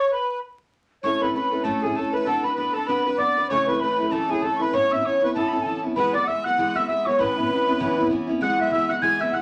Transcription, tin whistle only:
0, 0, Header, 1, 2, 480
1, 0, Start_track
1, 0, Key_signature, 3, "major"
1, 0, Tempo, 307850
1, 1611, Time_signature, 4, 2, 24, 8
1, 14683, End_track
2, 0, Start_track
2, 0, Title_t, "Tin whistle"
2, 0, Program_c, 0, 75
2, 0, Note_on_c, 0, 85, 86
2, 177, Note_off_c, 0, 85, 0
2, 196, Note_on_c, 0, 83, 76
2, 631, Note_off_c, 0, 83, 0
2, 1619, Note_on_c, 0, 85, 94
2, 1900, Note_on_c, 0, 83, 77
2, 1923, Note_off_c, 0, 85, 0
2, 2096, Note_off_c, 0, 83, 0
2, 2110, Note_on_c, 0, 83, 77
2, 2552, Note_on_c, 0, 81, 76
2, 2576, Note_off_c, 0, 83, 0
2, 2856, Note_on_c, 0, 80, 66
2, 2880, Note_off_c, 0, 81, 0
2, 3056, Note_on_c, 0, 81, 77
2, 3079, Note_off_c, 0, 80, 0
2, 3330, Note_on_c, 0, 83, 72
2, 3354, Note_off_c, 0, 81, 0
2, 3521, Note_off_c, 0, 83, 0
2, 3530, Note_on_c, 0, 81, 83
2, 3803, Note_on_c, 0, 83, 76
2, 3826, Note_off_c, 0, 81, 0
2, 3997, Note_off_c, 0, 83, 0
2, 4006, Note_on_c, 0, 83, 80
2, 4201, Note_off_c, 0, 83, 0
2, 4201, Note_on_c, 0, 83, 57
2, 4268, Note_on_c, 0, 81, 80
2, 4292, Note_off_c, 0, 83, 0
2, 4469, Note_on_c, 0, 83, 80
2, 4492, Note_off_c, 0, 81, 0
2, 4945, Note_off_c, 0, 83, 0
2, 4954, Note_on_c, 0, 86, 97
2, 5409, Note_off_c, 0, 86, 0
2, 5439, Note_on_c, 0, 85, 90
2, 5922, Note_on_c, 0, 83, 98
2, 5945, Note_off_c, 0, 85, 0
2, 6416, Note_on_c, 0, 81, 85
2, 6439, Note_off_c, 0, 83, 0
2, 6708, Note_on_c, 0, 80, 77
2, 6731, Note_off_c, 0, 81, 0
2, 6890, Note_on_c, 0, 81, 85
2, 6913, Note_off_c, 0, 80, 0
2, 7096, Note_off_c, 0, 81, 0
2, 7105, Note_on_c, 0, 85, 64
2, 7207, Note_on_c, 0, 83, 81
2, 7230, Note_off_c, 0, 85, 0
2, 7388, Note_on_c, 0, 85, 91
2, 7412, Note_off_c, 0, 83, 0
2, 7662, Note_on_c, 0, 88, 99
2, 7686, Note_off_c, 0, 85, 0
2, 7880, Note_on_c, 0, 85, 92
2, 7904, Note_off_c, 0, 88, 0
2, 8325, Note_off_c, 0, 85, 0
2, 8334, Note_on_c, 0, 81, 81
2, 8546, Note_on_c, 0, 83, 43
2, 8569, Note_off_c, 0, 81, 0
2, 8623, Note_on_c, 0, 81, 70
2, 8647, Note_off_c, 0, 83, 0
2, 8759, Note_on_c, 0, 80, 58
2, 8783, Note_off_c, 0, 81, 0
2, 8824, Note_on_c, 0, 81, 74
2, 8848, Note_off_c, 0, 80, 0
2, 9097, Note_off_c, 0, 81, 0
2, 9293, Note_on_c, 0, 83, 85
2, 9577, Note_on_c, 0, 86, 94
2, 9600, Note_off_c, 0, 83, 0
2, 9780, Note_on_c, 0, 88, 88
2, 9804, Note_off_c, 0, 86, 0
2, 10043, Note_on_c, 0, 90, 96
2, 10066, Note_off_c, 0, 88, 0
2, 10538, Note_on_c, 0, 88, 87
2, 10561, Note_off_c, 0, 90, 0
2, 10709, Note_off_c, 0, 88, 0
2, 10718, Note_on_c, 0, 88, 103
2, 10999, Note_on_c, 0, 85, 88
2, 11022, Note_off_c, 0, 88, 0
2, 11210, Note_on_c, 0, 83, 87
2, 11233, Note_off_c, 0, 85, 0
2, 12650, Note_off_c, 0, 83, 0
2, 13135, Note_on_c, 0, 90, 90
2, 13580, Note_off_c, 0, 90, 0
2, 13592, Note_on_c, 0, 88, 95
2, 13866, Note_on_c, 0, 90, 105
2, 13889, Note_off_c, 0, 88, 0
2, 14066, Note_on_c, 0, 92, 104
2, 14090, Note_off_c, 0, 90, 0
2, 14358, Note_on_c, 0, 88, 98
2, 14382, Note_off_c, 0, 92, 0
2, 14564, Note_on_c, 0, 90, 102
2, 14587, Note_off_c, 0, 88, 0
2, 14683, Note_off_c, 0, 90, 0
2, 14683, End_track
0, 0, End_of_file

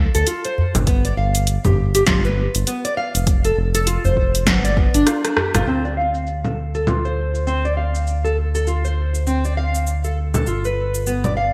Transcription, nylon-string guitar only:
0, 0, Header, 1, 2, 480
1, 0, Start_track
1, 0, Tempo, 600000
1, 698, Time_signature, 4, 2, 24, 8
1, 9226, End_track
2, 0, Start_track
2, 0, Title_t, "Nylon-string guitar"
2, 0, Program_c, 0, 24
2, 118, Note_on_c, 0, 69, 96
2, 212, Note_off_c, 0, 69, 0
2, 217, Note_on_c, 0, 65, 76
2, 346, Note_off_c, 0, 65, 0
2, 361, Note_on_c, 0, 72, 73
2, 688, Note_off_c, 0, 72, 0
2, 697, Note_on_c, 0, 59, 94
2, 826, Note_off_c, 0, 59, 0
2, 842, Note_on_c, 0, 74, 79
2, 929, Note_off_c, 0, 74, 0
2, 939, Note_on_c, 0, 77, 73
2, 1307, Note_off_c, 0, 77, 0
2, 1321, Note_on_c, 0, 67, 70
2, 1413, Note_off_c, 0, 67, 0
2, 1558, Note_on_c, 0, 67, 101
2, 1652, Note_off_c, 0, 67, 0
2, 1656, Note_on_c, 0, 65, 81
2, 1785, Note_off_c, 0, 65, 0
2, 1799, Note_on_c, 0, 71, 72
2, 2128, Note_off_c, 0, 71, 0
2, 2138, Note_on_c, 0, 59, 96
2, 2266, Note_off_c, 0, 59, 0
2, 2279, Note_on_c, 0, 74, 73
2, 2367, Note_off_c, 0, 74, 0
2, 2378, Note_on_c, 0, 77, 76
2, 2618, Note_off_c, 0, 77, 0
2, 2759, Note_on_c, 0, 69, 75
2, 2852, Note_off_c, 0, 69, 0
2, 2998, Note_on_c, 0, 69, 93
2, 3092, Note_off_c, 0, 69, 0
2, 3095, Note_on_c, 0, 65, 79
2, 3225, Note_off_c, 0, 65, 0
2, 3240, Note_on_c, 0, 72, 74
2, 3568, Note_off_c, 0, 72, 0
2, 3577, Note_on_c, 0, 59, 93
2, 3706, Note_off_c, 0, 59, 0
2, 3716, Note_on_c, 0, 74, 74
2, 3806, Note_off_c, 0, 74, 0
2, 3814, Note_on_c, 0, 59, 75
2, 3951, Note_off_c, 0, 59, 0
2, 3957, Note_on_c, 0, 62, 75
2, 4051, Note_off_c, 0, 62, 0
2, 4053, Note_on_c, 0, 65, 79
2, 4137, Note_off_c, 0, 65, 0
2, 4198, Note_on_c, 0, 62, 75
2, 4292, Note_off_c, 0, 62, 0
2, 4297, Note_on_c, 0, 67, 72
2, 4433, Note_off_c, 0, 67, 0
2, 4441, Note_on_c, 0, 65, 107
2, 4528, Note_off_c, 0, 65, 0
2, 4538, Note_on_c, 0, 60, 81
2, 4666, Note_off_c, 0, 60, 0
2, 4679, Note_on_c, 0, 74, 60
2, 4767, Note_off_c, 0, 74, 0
2, 4777, Note_on_c, 0, 77, 67
2, 5146, Note_off_c, 0, 77, 0
2, 5159, Note_on_c, 0, 69, 60
2, 5252, Note_off_c, 0, 69, 0
2, 5399, Note_on_c, 0, 69, 91
2, 5492, Note_off_c, 0, 69, 0
2, 5499, Note_on_c, 0, 65, 69
2, 5627, Note_off_c, 0, 65, 0
2, 5641, Note_on_c, 0, 72, 65
2, 5968, Note_off_c, 0, 72, 0
2, 5976, Note_on_c, 0, 60, 83
2, 6105, Note_off_c, 0, 60, 0
2, 6120, Note_on_c, 0, 74, 64
2, 6208, Note_off_c, 0, 74, 0
2, 6216, Note_on_c, 0, 77, 60
2, 6585, Note_off_c, 0, 77, 0
2, 6596, Note_on_c, 0, 69, 70
2, 6691, Note_off_c, 0, 69, 0
2, 6839, Note_on_c, 0, 69, 88
2, 6932, Note_off_c, 0, 69, 0
2, 6939, Note_on_c, 0, 65, 70
2, 7067, Note_off_c, 0, 65, 0
2, 7078, Note_on_c, 0, 72, 64
2, 7407, Note_off_c, 0, 72, 0
2, 7415, Note_on_c, 0, 60, 80
2, 7545, Note_off_c, 0, 60, 0
2, 7561, Note_on_c, 0, 74, 69
2, 7648, Note_off_c, 0, 74, 0
2, 7658, Note_on_c, 0, 77, 66
2, 8026, Note_off_c, 0, 77, 0
2, 8036, Note_on_c, 0, 69, 67
2, 8131, Note_off_c, 0, 69, 0
2, 8279, Note_on_c, 0, 69, 89
2, 8372, Note_off_c, 0, 69, 0
2, 8378, Note_on_c, 0, 65, 75
2, 8506, Note_off_c, 0, 65, 0
2, 8521, Note_on_c, 0, 71, 66
2, 8848, Note_off_c, 0, 71, 0
2, 8856, Note_on_c, 0, 59, 82
2, 8985, Note_off_c, 0, 59, 0
2, 8998, Note_on_c, 0, 74, 65
2, 9087, Note_off_c, 0, 74, 0
2, 9094, Note_on_c, 0, 77, 58
2, 9226, Note_off_c, 0, 77, 0
2, 9226, End_track
0, 0, End_of_file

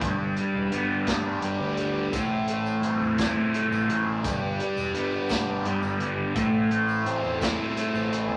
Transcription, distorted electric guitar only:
0, 0, Header, 1, 2, 480
1, 0, Start_track
1, 0, Key_signature, 0, "minor"
1, 0, Tempo, 704225
1, 13, Time_signature, 6, 3, 24, 8
1, 5704, End_track
2, 0, Start_track
2, 0, Title_t, "Distorted electric guitar"
2, 0, Program_c, 0, 30
2, 12, Note_on_c, 0, 43, 65
2, 252, Note_on_c, 0, 55, 64
2, 493, Note_on_c, 0, 59, 65
2, 729, Note_on_c, 0, 62, 69
2, 962, Note_off_c, 0, 55, 0
2, 970, Note_on_c, 0, 55, 65
2, 1212, Note_off_c, 0, 43, 0
2, 1212, Note_on_c, 0, 50, 62
2, 1450, Note_on_c, 0, 45, 72
2, 1451, Note_off_c, 0, 55, 0
2, 1451, Note_off_c, 0, 62, 0
2, 1452, Note_off_c, 0, 50, 0
2, 1452, Note_off_c, 0, 59, 0
2, 1689, Note_on_c, 0, 57, 61
2, 1931, Note_on_c, 0, 60, 63
2, 2168, Note_on_c, 0, 64, 69
2, 2400, Note_off_c, 0, 57, 0
2, 2408, Note_on_c, 0, 57, 67
2, 2648, Note_on_c, 0, 52, 69
2, 2651, Note_off_c, 0, 45, 0
2, 2887, Note_on_c, 0, 43, 75
2, 2890, Note_off_c, 0, 52, 0
2, 2890, Note_off_c, 0, 57, 0
2, 2890, Note_off_c, 0, 64, 0
2, 2891, Note_off_c, 0, 60, 0
2, 3128, Note_on_c, 0, 55, 67
2, 3363, Note_on_c, 0, 59, 66
2, 3602, Note_on_c, 0, 62, 71
2, 3840, Note_off_c, 0, 55, 0
2, 3848, Note_on_c, 0, 55, 69
2, 4088, Note_on_c, 0, 50, 72
2, 4090, Note_off_c, 0, 43, 0
2, 4327, Note_off_c, 0, 62, 0
2, 4328, Note_off_c, 0, 59, 0
2, 4329, Note_on_c, 0, 45, 71
2, 4330, Note_off_c, 0, 50, 0
2, 4330, Note_off_c, 0, 55, 0
2, 4572, Note_on_c, 0, 57, 67
2, 4809, Note_on_c, 0, 60, 59
2, 5047, Note_on_c, 0, 64, 76
2, 5282, Note_off_c, 0, 57, 0
2, 5290, Note_on_c, 0, 57, 66
2, 5531, Note_on_c, 0, 52, 67
2, 5532, Note_off_c, 0, 45, 0
2, 5704, Note_off_c, 0, 52, 0
2, 5704, Note_off_c, 0, 57, 0
2, 5704, Note_off_c, 0, 60, 0
2, 5704, Note_off_c, 0, 64, 0
2, 5704, End_track
0, 0, End_of_file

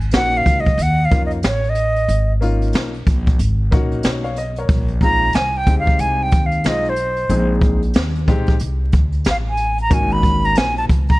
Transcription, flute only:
0, 0, Header, 1, 2, 480
1, 0, Start_track
1, 0, Tempo, 652174
1, 1537, Time_signature, 4, 2, 24, 8
1, 8240, End_track
2, 0, Start_track
2, 0, Title_t, "Flute"
2, 0, Program_c, 0, 73
2, 110, Note_on_c, 0, 78, 107
2, 274, Note_on_c, 0, 77, 94
2, 285, Note_off_c, 0, 78, 0
2, 444, Note_on_c, 0, 75, 90
2, 455, Note_off_c, 0, 77, 0
2, 605, Note_on_c, 0, 78, 99
2, 616, Note_off_c, 0, 75, 0
2, 773, Note_on_c, 0, 77, 89
2, 784, Note_off_c, 0, 78, 0
2, 915, Note_off_c, 0, 77, 0
2, 926, Note_on_c, 0, 75, 83
2, 970, Note_off_c, 0, 75, 0
2, 1080, Note_on_c, 0, 73, 87
2, 1247, Note_on_c, 0, 75, 87
2, 1258, Note_off_c, 0, 73, 0
2, 1712, Note_off_c, 0, 75, 0
2, 3697, Note_on_c, 0, 82, 108
2, 3935, Note_on_c, 0, 80, 106
2, 3946, Note_off_c, 0, 82, 0
2, 4099, Note_on_c, 0, 79, 103
2, 4110, Note_off_c, 0, 80, 0
2, 4258, Note_off_c, 0, 79, 0
2, 4263, Note_on_c, 0, 77, 96
2, 4418, Note_on_c, 0, 80, 103
2, 4429, Note_off_c, 0, 77, 0
2, 4584, Note_on_c, 0, 79, 98
2, 4595, Note_off_c, 0, 80, 0
2, 4755, Note_on_c, 0, 77, 89
2, 4766, Note_off_c, 0, 79, 0
2, 4911, Note_on_c, 0, 75, 99
2, 4922, Note_off_c, 0, 77, 0
2, 5074, Note_on_c, 0, 72, 83
2, 5085, Note_off_c, 0, 75, 0
2, 5545, Note_off_c, 0, 72, 0
2, 6848, Note_on_c, 0, 77, 97
2, 6892, Note_off_c, 0, 77, 0
2, 6988, Note_on_c, 0, 80, 91
2, 7199, Note_off_c, 0, 80, 0
2, 7224, Note_on_c, 0, 82, 94
2, 7312, Note_on_c, 0, 80, 103
2, 7323, Note_off_c, 0, 82, 0
2, 7451, Note_on_c, 0, 83, 106
2, 7462, Note_off_c, 0, 80, 0
2, 7693, Note_on_c, 0, 82, 108
2, 7704, Note_off_c, 0, 83, 0
2, 7781, Note_on_c, 0, 80, 105
2, 7792, Note_off_c, 0, 82, 0
2, 7925, Note_off_c, 0, 80, 0
2, 7932, Note_on_c, 0, 81, 94
2, 7985, Note_off_c, 0, 81, 0
2, 8169, Note_on_c, 0, 82, 98
2, 8240, Note_off_c, 0, 82, 0
2, 8240, End_track
0, 0, End_of_file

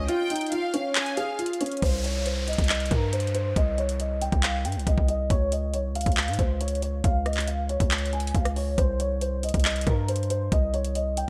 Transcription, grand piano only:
0, 0, Header, 1, 2, 480
1, 0, Start_track
1, 0, Tempo, 434783
1, 94, Time_signature, 4, 2, 24, 8
1, 12465, End_track
2, 0, Start_track
2, 0, Title_t, "Grand piano"
2, 0, Program_c, 0, 0
2, 94, Note_on_c, 0, 65, 101
2, 320, Note_off_c, 0, 65, 0
2, 333, Note_on_c, 0, 63, 77
2, 560, Note_off_c, 0, 63, 0
2, 572, Note_on_c, 0, 65, 81
2, 799, Note_off_c, 0, 65, 0
2, 813, Note_on_c, 0, 61, 85
2, 1264, Note_off_c, 0, 61, 0
2, 1294, Note_on_c, 0, 68, 79
2, 1520, Note_off_c, 0, 68, 0
2, 1533, Note_on_c, 0, 65, 77
2, 1759, Note_off_c, 0, 65, 0
2, 1773, Note_on_c, 0, 61, 85
2, 2000, Note_off_c, 0, 61, 0
2, 2014, Note_on_c, 0, 72, 101
2, 2240, Note_off_c, 0, 72, 0
2, 2252, Note_on_c, 0, 73, 85
2, 2479, Note_off_c, 0, 73, 0
2, 2493, Note_on_c, 0, 72, 80
2, 2720, Note_off_c, 0, 72, 0
2, 2734, Note_on_c, 0, 75, 80
2, 2956, Note_off_c, 0, 75, 0
2, 2973, Note_on_c, 0, 75, 87
2, 3199, Note_off_c, 0, 75, 0
2, 3214, Note_on_c, 0, 70, 78
2, 3440, Note_off_c, 0, 70, 0
2, 3453, Note_on_c, 0, 72, 81
2, 3676, Note_off_c, 0, 72, 0
2, 3692, Note_on_c, 0, 72, 96
2, 3919, Note_off_c, 0, 72, 0
2, 3934, Note_on_c, 0, 75, 101
2, 4160, Note_off_c, 0, 75, 0
2, 4174, Note_on_c, 0, 73, 84
2, 4400, Note_off_c, 0, 73, 0
2, 4413, Note_on_c, 0, 75, 76
2, 4639, Note_off_c, 0, 75, 0
2, 4654, Note_on_c, 0, 79, 81
2, 4880, Note_off_c, 0, 79, 0
2, 4893, Note_on_c, 0, 77, 93
2, 5119, Note_off_c, 0, 77, 0
2, 5133, Note_on_c, 0, 79, 79
2, 5360, Note_off_c, 0, 79, 0
2, 5373, Note_on_c, 0, 75, 77
2, 5597, Note_off_c, 0, 75, 0
2, 5613, Note_on_c, 0, 75, 90
2, 5840, Note_off_c, 0, 75, 0
2, 5853, Note_on_c, 0, 73, 108
2, 6080, Note_off_c, 0, 73, 0
2, 6093, Note_on_c, 0, 75, 77
2, 6320, Note_off_c, 0, 75, 0
2, 6333, Note_on_c, 0, 73, 80
2, 6559, Note_off_c, 0, 73, 0
2, 6574, Note_on_c, 0, 77, 92
2, 6797, Note_off_c, 0, 77, 0
2, 7054, Note_on_c, 0, 72, 74
2, 7280, Note_off_c, 0, 72, 0
2, 7293, Note_on_c, 0, 73, 86
2, 7516, Note_off_c, 0, 73, 0
2, 7533, Note_on_c, 0, 73, 80
2, 7759, Note_off_c, 0, 73, 0
2, 7773, Note_on_c, 0, 77, 102
2, 8000, Note_off_c, 0, 77, 0
2, 8013, Note_on_c, 0, 75, 75
2, 8240, Note_off_c, 0, 75, 0
2, 8252, Note_on_c, 0, 77, 79
2, 8479, Note_off_c, 0, 77, 0
2, 8493, Note_on_c, 0, 73, 78
2, 8944, Note_off_c, 0, 73, 0
2, 8974, Note_on_c, 0, 80, 76
2, 9200, Note_off_c, 0, 80, 0
2, 9213, Note_on_c, 0, 77, 76
2, 9440, Note_off_c, 0, 77, 0
2, 9454, Note_on_c, 0, 73, 82
2, 9680, Note_off_c, 0, 73, 0
2, 9694, Note_on_c, 0, 72, 104
2, 9920, Note_off_c, 0, 72, 0
2, 9933, Note_on_c, 0, 73, 88
2, 10159, Note_off_c, 0, 73, 0
2, 10174, Note_on_c, 0, 72, 80
2, 10400, Note_off_c, 0, 72, 0
2, 10414, Note_on_c, 0, 75, 80
2, 10636, Note_off_c, 0, 75, 0
2, 10653, Note_on_c, 0, 75, 91
2, 10879, Note_off_c, 0, 75, 0
2, 10893, Note_on_c, 0, 70, 81
2, 11119, Note_off_c, 0, 70, 0
2, 11133, Note_on_c, 0, 72, 82
2, 11356, Note_off_c, 0, 72, 0
2, 11373, Note_on_c, 0, 72, 94
2, 11599, Note_off_c, 0, 72, 0
2, 11614, Note_on_c, 0, 75, 97
2, 11840, Note_off_c, 0, 75, 0
2, 11854, Note_on_c, 0, 73, 83
2, 12080, Note_off_c, 0, 73, 0
2, 12093, Note_on_c, 0, 75, 78
2, 12320, Note_off_c, 0, 75, 0
2, 12335, Note_on_c, 0, 79, 82
2, 12465, Note_off_c, 0, 79, 0
2, 12465, End_track
0, 0, End_of_file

